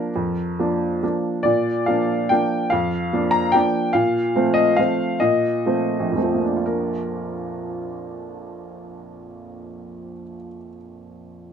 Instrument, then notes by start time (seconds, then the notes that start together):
upright piano
Already playing: F3 A#3 D4 A#4
0.16 F2
0.59 F3 A#3 D4
1.03 F3 A#3 D4
1.43 A#2 D5
1.86 F3 A#3 D4 F5
2.29 F3 A#3 D4 G5
2.70 F2 F5
3.13 F3 A#3 D4
3.31 A#5
3.52 F3 A#3 D4 G5
3.93 A#2 F5
4.36 F3 A3 C4
4.54 D#5
4.76 F3 A3 C4 F5
5.20 A#2 D#5
5.66 F3 A3 C4
6.00 A#1
6.12 F2
6.16 F3 A3 C4
6.23 F3
6.34 A#3
6.45 D4
6.56 F4
6.66 A#4